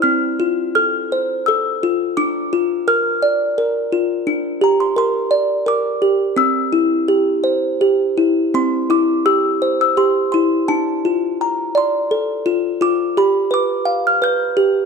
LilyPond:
\new Staff \with { instrumentName = "Music box" } { \time 3/4 \key c \mixolydian \tempo 4 = 85 << { f'''4 f'''4 e'''4 | d'''4 f'''4. r8 | r8 bes''16 c'''16 c'''4 d'''4 | e'''2~ e'''8 r8 |
c'''8 d'''8 e'''8. e'''16 c'''8 c'''8 | a''4 bes''8 c'''4 r8 | d'''8 b''8 d'''8. f'''16 g'''4 | } \\ { c'8 f'8 a'8 c''8 a'8 f'8 | d'8 f'8 bes'8 d''8 bes'8 f'8 | d'8 g'8 bes'8 d''8 bes'8 g'8 | c'8 e'8 g'8 c''8 g'8 e'8 |
c'8 e'8 g'8 c''8 g'8 e'8 | d'8 f'4 d''8 a'8 f'8 | f'8 g'8 b'8 f''8 b'8 g'8 | } >> }